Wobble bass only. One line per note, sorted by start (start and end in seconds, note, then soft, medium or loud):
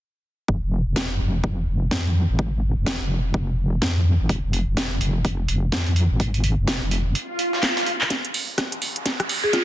0.48 0.60 F1 medium
0.63 0.84 F1 medium
0.86 1.18 F1 medium
1.20 1.42 F1 medium
1.44 1.66 F1 medium
1.67 1.90 F1 medium
1.91 2.27 F2 medium
2.29 2.75 G#1 medium
2.77 2.98 F1 medium
3.01 3.33 F1 medium
3.34 3.80 F1 medium
3.82 4.18 F2 medium
4.20 4.28 G#1 medium
4.29 4.41 F1 medium
4.44 4.65 F1 medium
4.67 4.99 F1 medium
5.01 5.23 F1 medium
5.25 5.47 F1 loud
5.48 5.71 F1 medium
5.72 6.08 F2 medium
6.10 6.56 G#1 medium
6.58 6.79 F1 medium
6.82 7.14 F1 medium